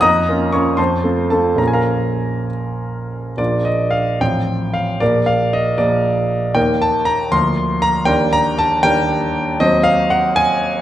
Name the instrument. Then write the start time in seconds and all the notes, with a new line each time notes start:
grand piano
0.01 F2 D#5 A#5 D#6
0.29 A#3 C#4 F4
0.52 A#3 C#4 F4 C#5 C#6
0.77 F2 C5 A5 C6
1.04 A3 C4 F4
1.30 A3 C4 F4 A4 A5
1.56 A#1 A#3 C#4 F4 A#5
1.68 G#5
1.73 A#4 F5 A#5
3.37 A#1 A#3 D4 F4 D5
3.65 D#5
3.91 F5
4.20 A1 F3 C4 F4 G5
4.74 F5
5.00 A#1 F3 A#3 A#4 D5
5.26 F5
5.53 D#5
5.78 A#1 F3 A#3 A#4 D5
6.55 D#2 D#3 A#3 A#4 G5
6.82 A5
7.05 A#5
7.31 D2 F3 A#3 A#4 C6
7.82 A#5
8.05 D#2 G3 D4 A#4 G5
8.33 A#5
8.59 A5
8.83 D#2 G3 D4 A#4 G5
9.60 D#2 F#3 C4 C5 D#5
9.83 F5
10.10 F#5
10.36 G#5